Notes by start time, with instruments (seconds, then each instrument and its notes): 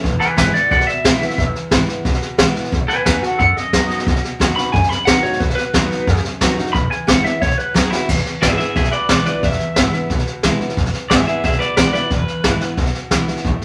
0.04 upright bass E1, steel-string acoustic guitar E2, kick, snare
0.20 clean electric guitar B4 G#5, muted upright bass stroke, snare
0.36 upright bass G#1, steel-string acoustic guitar E3 G#3 B3 E4, clean electric guitar B4 G#5, kick, snare, hi-hat pedal
0.54 steel-string acoustic guitar B3 E4, clean electric guitar D5 F#5, muted upright bass stroke, snare
0.71 upright bass B1, steel-string acoustic guitar B2, clean electric guitar D5 F#5, kick, snare
0.80 snare
0.87 clean electric guitar E5, muted upright bass stroke, snare
1.04 upright bass B1, steel-string acoustic guitar E3 G#3 B3 E4, kick, snare, hi-hat pedal
1.21 upright bass C#2, steel-string acoustic guitar B3 E4, snare
1.30 snare
1.38 upright bass E1, steel-string acoustic guitar E2, kick, snare
1.55 muted upright bass stroke, snare
1.71 upright bass G#1, steel-string acoustic guitar E3 G#3 B3 E4, kick, snare, hi-hat pedal
1.88 steel-string acoustic guitar B3 E4, snare
2.05 upright bass B1, steel-string acoustic guitar B2, kick, snare
2.14 snare
2.22 snare
2.38 upright bass B1, steel-string acoustic guitar E3 G#3 B3 E4, kick, snare, hi-hat pedal
2.55 upright bass A1, steel-string acoustic guitar B3 E4, snare
2.64 snare
2.72 upright bass B1, steel-string acoustic guitar B2, kick, snare
2.88 clean electric guitar B4 G#5, snare
3.06 upright bass D#2, steel-string acoustic guitar F#3 B3 D#4 F#4, clean electric guitar B4 G#5, kick, snare, hi-hat pedal
3.22 steel-string acoustic guitar D#4 F#4, clean electric guitar A4 F#5, muted upright bass stroke, snare
3.39 upright bass F#2, steel-string acoustic guitar F#2, clean electric guitar A4 F#5, kick, snare
3.57 clean electric guitar D#5, snare
3.73 upright bass F#2, steel-string acoustic guitar F#3 B3 D#4 F#4, kick, snare, hi-hat pedal
3.90 upright bass A2, snare
3.99 snare
4.07 upright bass B1, steel-string acoustic guitar B2, kick, snare
4.16 snare
4.24 snare
4.40 upright bass D#2, steel-string acoustic guitar F#3 B3 D#4 F#4, kick, snare, hi-hat pedal
4.56 steel-string acoustic guitar D#4 F#4, clean electric guitar B5, muted upright bass stroke, snare
4.72 steel-string acoustic guitar F#2, upright bass F#2, clean electric guitar G#5, kick, snare
4.83 snare
4.89 clean electric guitar B5, muted upright bass stroke, snare
5.05 upright bass F#2, steel-string acoustic guitar F#3 B3 D#4 F#4, clean electric guitar F#5, kick, snare, hi-hat pedal
5.22 upright bass A2, steel-string acoustic guitar D#4 F#4, clean electric guitar C#5, snare
5.33 snare
5.40 upright bass B1, steel-string acoustic guitar B2, clean electric guitar B4, kick, snare
5.50 snare
5.55 clean electric guitar B4, snare
5.73 upright bass D#2, steel-string acoustic guitar F#3 B3 D#4 F#4, kick, snare, hi-hat pedal
5.91 muted upright bass stroke, snare
6.07 upright bass F#2, steel-string acoustic guitar F#2, kick, snare
6.16 snare
6.24 muted upright bass stroke, snare
6.41 upright bass F#2, steel-string acoustic guitar F#3 B3 D#4 F#4, kick, snare, hi-hat pedal
6.57 upright bass A2, steel-string acoustic guitar D#4 F#4, snare
6.66 snare
6.73 upright bass E1, steel-string acoustic guitar E2, clean electric guitar B5, kick, snare
6.91 clean electric guitar G#5, muted upright bass stroke, snare
7.07 upright bass A1, steel-string acoustic guitar E3 G#3 B3 E4, clean electric guitar F#5, kick, snare, hi-hat pedal
7.24 steel-string acoustic guitar B3 E4, clean electric guitar E5, muted upright bass stroke, snare
7.42 upright bass B1, steel-string acoustic guitar B2, clean electric guitar C#5, kick, snare
7.51 snare
7.58 clean electric guitar B4, snare
7.74 upright bass F#2, steel-string acoustic guitar F#3 B3 D#4 F#4, clean electric guitar G#4, kick, snare, hi-hat pedal
7.91 upright bass D#2, steel-string acoustic guitar D#4 F#4, clean electric guitar E4, snare
8.09 upright bass E1, steel-string acoustic guitar E2, kick, snare, crash
8.17 snare
8.26 muted upright bass stroke, snare
8.42 upright bass G#1, steel-string acoustic guitar E3 G#3 B3 E4, clean electric guitar G#4 E5, kick, snare, hi-hat pedal
8.57 steel-string acoustic guitar B3 E4, clean electric guitar G#4 E5, muted upright bass stroke, snare
8.75 upright bass B1, steel-string acoustic guitar B2, clean electric guitar G#4 E5, kick, snare
8.84 snare
8.91 clean electric guitar B4 D5, snare
9.09 upright bass B1, steel-string acoustic guitar E3 G#3 B3 E4, clean electric guitar B4 D5, kick, snare, hi-hat pedal
9.25 upright bass C#2, steel-string acoustic guitar B3 E4, clean electric guitar B4 D5, snare
9.43 upright bass E1, steel-string acoustic guitar E2, clean electric guitar E5, kick, snare
9.52 snare
9.59 muted upright bass stroke, snare
9.76 upright bass G#1, steel-string acoustic guitar E3 G#3 B3 E4, kick, snare, hi-hat pedal
9.93 steel-string acoustic guitar B3 E4, muted upright bass stroke, snare
10.09 upright bass B1, steel-string acoustic guitar B2, kick, snare
10.18 snare
10.27 snare
10.43 upright bass B1, steel-string acoustic guitar E3 G#3 B3 E4, kick, snare, hi-hat pedal
10.61 upright bass C#2, steel-string acoustic guitar B3 E4, snare
10.69 snare
10.77 upright bass E1, steel-string acoustic guitar E2, kick, snare
10.85 snare
10.93 muted upright bass stroke, snare
11.10 upright bass G#1, steel-string acoustic guitar E3 G#3 B3 E4, clean electric guitar G#4 E5, kick, snare, hi-hat pedal
11.27 steel-string acoustic guitar B3 E4, clean electric guitar G#4 E5, muted upright bass stroke, snare
11.44 upright bass B1, steel-string acoustic guitar B2, clean electric guitar G#4 E5, kick, snare
11.52 snare
11.59 clean electric guitar B4 D5, snare
11.77 upright bass B1, steel-string acoustic guitar E3 G#3 B3 E4, clean electric guitar B4 D5, kick, snare, hi-hat pedal
11.93 upright bass C#2, steel-string acoustic guitar B3 E4, clean electric guitar B4 D5, snare
12.10 upright bass E1, steel-string acoustic guitar E2, clean electric guitar B4, kick, snare
12.28 snare
12.44 upright bass G#1, steel-string acoustic guitar E3 G#3 B3 E4, kick, snare, hi-hat pedal
12.60 steel-string acoustic guitar B3 E4, snare
12.77 upright bass B1, steel-string acoustic guitar B2, kick, snare
12.86 snare
12.94 snare
13.11 upright bass B1, steel-string acoustic guitar E3 G#3 B3 E4, kick, snare, hi-hat pedal
13.28 upright bass C#2, steel-string acoustic guitar B3 E4, snare
13.36 snare
13.44 upright bass A1, steel-string acoustic guitar A2, kick, snare
13.61 muted upright bass stroke, snare